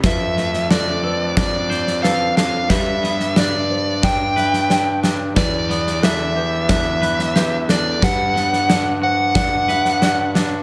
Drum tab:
SD |o-ooo---o-ooo-o-|o-ooo---o-ooo-o-|o-ooo---o-ooo-o-|o-ooo---o-ooo-o-|
BD |o-------o-------|o-------o-------|o-------o-------|o-------o-------|